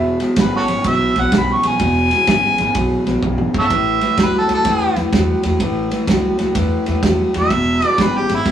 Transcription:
Already playing: E1 E2 B2 E5
0.20 E2 B2, snare, ride
0.36 G#1 E2 C#3, kick, snare, ride
0.41 B4
0.57 F#4 A4 C#5
0.68 G#1 E2 C#3, snare, ride
0.84 B1 E2 B2 E5, kick, ride
1.16 B1 E2 B2, snare, ride
1.21 F#5
1.32 B1 E2 C#3, kick, snare, ride
1.38 B5
1.53 C#6
1.63 B1 E2 C#3, snare, ride
1.68 G#5
1.79 E1 E2 B2, kick, ride
2.11 E2 B2, snare, ride
2.27 G#1 E2 C#3, kick, snare, ride
2.58 G#1 E2 C#3, snare, ride
2.75 B1 E2 B2, kick, ride
3.07 B1 E2 B2, snare, ride
3.22 B1 E2 C#3, kick, high tom
3.38 mid tom
3.54 G#1 E2 C#3, kick
3.59 A4 C#5 E5
3.70 A1 A2 E3, kick, ride
4.01 A2 E3, snare, ride
4.18 C#2 A2 F#3, kick, snare, ride
4.23 B4
4.38 A4
4.49 C#2 A2 F#3, snare, ride
4.54 A4
4.65 E2 A2 E3, kick, snare, ride
4.96 E2 A2 E3, snare, ride
5.13 E2 A2 F#3, kick, snare, ride
5.43 E2 A2 F#3, snare, ride
5.60 A1 A2 E3, kick, ride
5.91 A2 E3, snare, ride
6.07 C#2 A2 F#3, kick, snare, ride
6.39 C#2 A2 F#3, snare, ride
6.55 E2 A2 E3, kick, snare, ride
6.86 E2 A2 E3, snare, ride
7.03 E2 A2 F#3, kick, snare, ride
7.34 E2 A2 F#3, snare, ride
7.40 E5
7.50 E1 E2 B2, kick, ride
7.82 E2 B2, snare, ride
7.87 D5
7.98 G#1 E2 C#3 B4, kick, snare, ride
8.18 G4
8.29 G#1 E2 C#3, snare, ride
8.35 E4
8.46 B1 E2 B2, kick, snare, ride

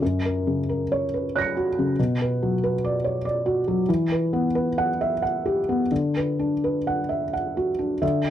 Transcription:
0.02 F#2
0.25 A#4
0.47 C#3
0.69 A#4
0.92 C#5
1.14 B4
1.36 C#5 F#6 A#6
1.41 C#7
1.57 F#4
1.79 C#3
1.99 B2
2.21 B4
2.43 F#3
2.64 B4
2.84 D5
3.04 C#5
3.25 D5
3.46 F#4
3.68 F#3
3.89 E3
4.12 B4
4.33 B3
4.55 B4
4.78 F#5
5.01 E5
5.22 F#5
5.46 G4
5.69 B3
5.91 D3
6.17 B4
6.39 D4
6.64 B4
6.87 F#5
7.09 E5
7.33 F#5
7.57 F#4
7.79 D4
8.02 D3 E5

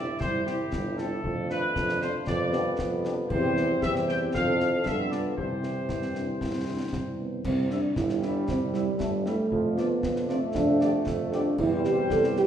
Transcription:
Already playing: G1 G3 E4 D5
0.20 C2 C5, concert bass drum, snare
0.46 C4 E4 G4, snare
0.73 G1, concert bass drum, snare
0.98 C4 E4 G4 A4, snare
1.24 F2 A3 D4, concert bass drum
1.50 D4 F4 B4, snare
1.76 F2, concert bass drum, snare
1.89 snare
2.02 D4 F4 C5, snare
2.27 F2 G3 B3 D5, concert bass drum, snare
2.53 B3 D4 G4, snare
2.79 F2, concert bass drum, snare
3.05 B3 D4 G4, snare
3.30 E2 C4 E4 G4 C5, concert bass drum, crash
3.57 snare
3.82 E2 C4 E4 G4 E5, concert bass drum, snare
3.96 snare
4.08 G5, snare
4.34 F2 F3 C4 D4 A4 F5, concert bass drum, snare
4.60 E4, snare
4.86 G2 B3 F4 A4 E5, concert bass drum, snare
5.11 D5, snare
5.37 C2 E3 C4 E4 G4 C5, concert bass drum
5.63 snare
5.89 C2 C4, concert bass drum, snare
6.02 snare
6.15 D4, snare
6.41 C2 E4, concert bass drum, snare
6.67 D4
6.93 C2 C4, concert bass drum, snare
7.18 B3
7.45 C2 C4, concert bass drum, crash
7.70 G3 C4 D4 E4 E5, snare
7.96 G1 G3 E4, concert bass drum, snare
8.09 snare
8.22 G3 C4 D4 E4 E5, snare
8.48 C2 C4, concert bass drum, snare
8.73 G3 C4 E4 E5, snare
9.00 G1 A3, concert bass drum, snare
9.25 G3 A3 C4 E4 E5, snare
9.50 F2 F3, concert bass drum
9.77 A3 B3 D4 F4 D5, snare
10.03 F2 D3, concert bass drum, snare
10.16 snare
10.29 A3 C4 D4 F4 D5, snare
10.55 F2 D4, concert bass drum, snare
10.81 G3 B3 G4 D5, snare
11.07 F2, concert bass drum, snare
11.32 G3 B3 D4 G4 D5, snare
11.58 E2 G3 C4 E4 G4 C5, concert bass drum, crash
11.85 G4, snare
12.10 E2 A4, concert bass drum, snare
12.24 snare
12.37 G4, snare

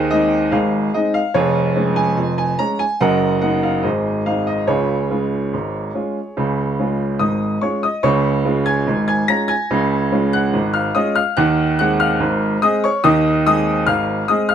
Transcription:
Already playing: D#2 D#3 G#4 C5 D#5
0.11 G#3 C4 D#4 D#5
0.52 G#1 G#2 G#4 C5 F5
0.94 G#3 C4 D#4 D#5
1.14 F5
1.34 F1 F2 F4 G#4 C#5
1.76 G#3 C#4
1.96 G#5
2.18 F1 F2
2.38 G#5
2.59 G#3 C#4 A#5
2.79 G#5
3.01 F#1 F#2 A#4 D#5 F#5
3.42 A#3 D#4 F#5
3.63 F5
3.83 G#1 G#2 G#4 C5 D#5
4.26 G#3 C4 D#4 F5
4.47 D#5
4.67 C#2 C#3 F4 G#4 C#5
5.10 G#3 C#4 F4
5.53 G#1 G#2
5.94 G#3 C#4 F4
6.37 C#2 C#3
6.80 G#3 C#4 F4
7.19 G#1 G#2 D#5 D#6
7.61 G#3 C#4 F4 C#5 C#6
7.83 D#5 D#6
8.03 C#2 C#3 C#5 C#6
8.45 G#3 C#4 F4
8.66 G#5 G#6
8.87 G#1 G#2
9.08 G#5 G#6
9.28 G#3 C#4 F4 A#5 A#6
9.48 G#5 G#6
9.71 C#2 C#3
10.11 G#3 C#4 F4
10.33 F#5 F#6
10.53 G#1 G#2
10.74 F5 F6
10.95 G#3 C#4 F4 D#5 D#6
11.15 F5 F6
11.37 D#2 D#3 F#5 F#6
11.79 G#3 C4 G#4 F#5 F#6
12.00 F5 F6
12.20 G#1 G#2
12.62 G#3 C4 G#4 D#5 D#6
12.84 C#5 C#6
13.04 D#2 D#3 D#5 D#6
13.47 G#3 C4 G#4 D#5 D#6
13.87 G#1 G#2 F5 F6
14.28 G#3 C4 G#4 D#5 D#6
14.49 F5 F6

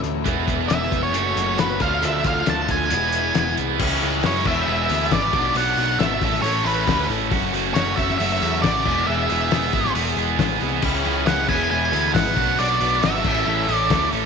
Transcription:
Already playing: A2 E3 A3 C#4 E4 A4 C#5 E5 C#6
0.02 D2, closed hi-hat
0.23 E1 E2 B2 E3 G#3 G#4 B4 E5 B5, kick, closed hi-hat
0.28 B3 E4
0.48 kick, closed hi-hat
0.68 E1 E5, snare, closed hi-hat
0.92 F1, kick, closed hi-hat
1.03 C#5
1.12 F#1 F#2 C#3 F#3 A3 F#4 A4 C#5 G#5, closed hi-hat
1.16 C#4 F#4
1.36 F#1, closed hi-hat
1.58 F#1 B4, snare, closed hi-hat
1.79 D2 D3 F3 A3 D4 F4 A4 D5 F5 A5, kick, closed hi-hat
1.83 F4
2.02 D2 E5, closed hi-hat
2.24 F5, kick, snare, closed hi-hat
2.46 D2 A5, snare, closed hi-hat
2.68 D2 G#5, kick, closed hi-hat
2.90 E1 E2 B2 E3 G#3 B3 G#4 B4 E5 B5, closed hi-hat
2.94 E4
3.12 closed hi-hat
3.35 E1, snare, closed hi-hat
3.57 C2, closed hi-hat
3.79 C#2 C#3 E3 G#3 C#4 E4 G#4, kick, crash
4.01 C#2 C#3 E3 G#3 C#4 E4 G#4, open hi-hat
4.23 F#2 C#3 E3 G#3 C#4 E4 G#4 C#5, snare, open hi-hat
4.45 E1 E2 B2 E3 G#3 B3 E4 G#4 E5, kick, crash
4.67 E1 E2 B2 E3 G#3 B3 E4 G#4 E5
4.89 D2 E2 B2 E3 G#3 B3 G#4, open hi-hat
4.93 E4
5.11 G#1 E2 B2 E3 G#3 B3 E4 G#4 D5, kick, snare, open hi-hat
5.33 B1 B2 F#3 B3 D4 F#4, kick, open hi-hat
5.55 B1 B2 F#3 B3 D4 F#4 F#5, open hi-hat
5.77 B1 B2 F#3 B3 D4 F#4, open hi-hat
5.99 G#1 B2 F#3 B3 D4 F#4 E5, snare, open hi-hat
6.21 A1 A2 E3 A3 C#4 A4, kick, open hi-hat
6.34 snare
6.42 A1 A2 E3 A3 C#4 A4 C#5, open hi-hat
6.64 A1 A2 E3 A3 C#4 A4 B4, open hi-hat
6.87 D2 A2 E3 A3 C#4 A4, kick, snare, open hi-hat
7.08 A1 A2 E3 A3 C#4 A4, open hi-hat
7.31 F#1 F#2 C#3 F#3 A3 C#4 F#4, kick, open hi-hat
7.52 F#1 F#2 C#3 F#3 A3 C#4 F#4, open hi-hat
7.74 F#1 F#2 C#3 F#3 A3 C#4 C#5, snare, open hi-hat
7.78 F#4
7.96 F#1 F#2 C#3 F#3 A3 C#4 F#4 E5, kick, open hi-hat
8.10 snare
8.18 F#1 F#2 C#3 F#3 A3 E5, open hi-hat
8.22 C#4 F#4
8.41 E2 F#2 C#3 F#3 A3 C#4 F#4, open hi-hat
8.62 A1 F#2 C#3 F#3 A3 C#4 D5, kick, snare, open hi-hat
8.66 F#4
8.85 E1 E2 B2 E3 G#3 B3 E4 G#4, kick, crash
9.07 E1 E2 B2 E3 G#3 B3 E4 G#4 E5
9.29 E1 E2 B2 E3 G#3 B3 E4 G#4, open hi-hat
9.51 E1 E2 B2 E3 G#3 B3 E4 G#4, snare, open hi-hat
9.73 G#1 E2 B2 E3 G#3 B3 E4 G#4, kick, open hi-hat
9.85 snare
9.94 E1 E2 B2 E3 G#3 B3 E4, open hi-hat
9.98 G#4
10.17 E1 E2 B2 E3 G#3 B3 E4, open hi-hat
10.21 G#4
10.39 A1 E2 B2 E3 G#3 B3 E4 G#4, kick, snare, open hi-hat
10.61 C2 E2 B2 E3 G#3 B3 E4 G#4, open hi-hat
10.82 C#2 C#3 E3 G#3 C#4 E4 G#4 C#5 E5 C#6, kick, crash
11.04 C#2 C#3 E3 G#3 C#4 E4 G#4, open hi-hat
11.26 C#2 C#3 E3 G#3 C#4 E4 G#4 F#5, snare, open hi-hat
11.48 E1 E2 B2 E3 G#3 B3 E4 G#4 B4 G#5 B5, kick, crash
11.70 E1 E2 B2 E3 G#3 B3 E4 G#4 G#5
11.91 D2 E2 B2 E3 G#3 B3 E4 G#4, open hi-hat
12.13 G#1 E2 B2 E3 G#3 B3 E4 G#4 F#5, kick, snare, open hi-hat
12.36 B1 B2 F#3 B3 D4 F#4 D5, kick, open hi-hat
12.58 B1 B2 F#3 B3 D4 F#4 D5, open hi-hat
12.80 B1 B2 F#3 B3 D4 F#4, open hi-hat
13.03 G#1 B2 F#3 B3 D4 F#4 E5, snare, open hi-hat
13.24 A1 A2 E3 A3 C#4 A4 C#5 E5, kick, crash
13.46 A1 A2 E3 A3 C#4 A4
13.68 A1 A2 E3 A3 C#4 A4, open hi-hat
13.76 D5
13.90 D2 A2 E3 A3 C#4 A4, kick, snare, open hi-hat
14.12 A1 A2 E3 A3 C#4 A4, open hi-hat

